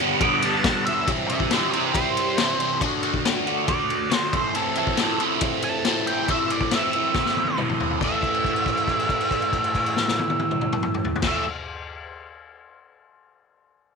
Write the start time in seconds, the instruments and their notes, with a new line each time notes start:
0.01 overdriven electric guitar G2 D3 G3 B3 D4
0.20 overdriven electric guitar D3 G3 B3, lead electric guitar D6, kick, ride
0.25 overdriven electric guitar D4
0.42 overdriven electric guitar B3 D4, lead electric guitar A5, ride
0.47 overdriven electric guitar G3
0.64 overdriven electric guitar G2 D3 G3, kick, snare, ride
0.68 overdriven electric guitar B3 D4
0.85 overdriven electric guitar D4, lead electric guitar E5, ride
0.90 overdriven electric guitar G3 B3
1.08 overdriven electric guitar C3 E3 G3 C4, kick, ride
1.12 overdriven electric guitar E4
1.27 overdriven electric guitar E4, lead electric guitar C5 E5, ride
1.32 overdriven electric guitar G3 C4
1.40 kick
1.51 overdriven electric guitar E3 G3 C4, lead electric guitar A4 D5, snare, ride
1.55 overdriven electric guitar E4
1.71 overdriven electric guitar E4, lead electric guitar G4 C5, ride
1.76 overdriven electric guitar G3 C4
1.94 lead electric guitar C5, kick, ride
2.17 ride
2.38 overdriven electric guitar C3 E3 G3 C4, snare, ride
2.42 overdriven electric guitar E4
2.59 overdriven electric guitar G3 C4 E4, ride
2.81 overdriven electric guitar D3 A3 D4, kick, ride
2.86 overdriven electric guitar F#4
3.03 overdriven electric guitar A3 D4 F#4, ride
3.14 kick
3.25 overdriven electric guitar D3 A3 D4 F#4, snare, ride
3.46 overdriven electric guitar A3 D4 F#4, ride
3.68 lead electric guitar D5, kick, ride
3.90 ride
4.10 overdriven electric guitar D3 A3 D4 F#4, snare, ride
4.14 lead electric guitar C5
4.33 overdriven electric guitar A2 E3 A3 C4 E4, kick, ride
4.37 lead electric guitar C5
4.54 overdriven electric guitar A2 E3 A3 C4 E4, lead electric guitar A4, ride
4.75 overdriven electric guitar A3 C4 E4, lead electric guitar A4, ride
4.87 kick
4.97 overdriven electric guitar E3 A3 C4 E4, snare, ride
5.19 overdriven electric guitar A3 C4 E4, ride
5.41 kick, ride
5.62 lead electric guitar A5, ride
5.85 overdriven electric guitar A2 E3 A3 C4, snare, ride
5.89 overdriven electric guitar E4
6.07 overdriven electric guitar C4 E4, lead electric guitar G5, ride
6.13 overdriven electric guitar A3
6.28 overdriven electric guitar A2 E3 A3 C4 E4, lead electric guitar E5, kick, ride
6.50 overdriven electric guitar C4 E4, lead electric guitar D5, ride
6.54 overdriven electric guitar A3
6.61 kick
6.71 overdriven electric guitar E3 A3, lead electric guitar E5, snare, ride
6.76 overdriven electric guitar C4 E4
6.93 overdriven electric guitar C4 E4, ride
6.98 overdriven electric guitar A3
7.14 kick, snare
7.26 snare
7.37 high tom
7.47 high tom
7.58 overdriven electric guitar A2 E3 A3 C4 E4, mid tom
7.69 mid tom
7.80 overdriven electric guitar A3 C4 E4, floor tom
7.91 floor tom
8.01 overdriven electric guitar A2 E3, lead electric guitar E5, kick, crash
8.05 overdriven electric guitar A3
8.23 kick, crash
8.34 crash
8.45 kick, crash
8.56 crash
8.66 kick, crash
8.77 crash
8.88 kick, crash
8.99 crash
9.09 kick, crash
9.21 crash
9.31 kick, crash
9.42 crash
9.53 kick, crash
9.64 crash
9.75 kick, crash
9.86 crash
9.96 snare
10.08 snare
10.19 high tom
10.30 high tom
10.39 high tom
10.51 mid tom
10.61 mid tom
10.73 mid tom
10.83 mid tom
10.94 mid tom
11.05 floor tom
11.16 floor tom
11.22 overdriven electric guitar A2, kick, snare, crash
11.26 overdriven electric guitar E3 A3, lead electric guitar E5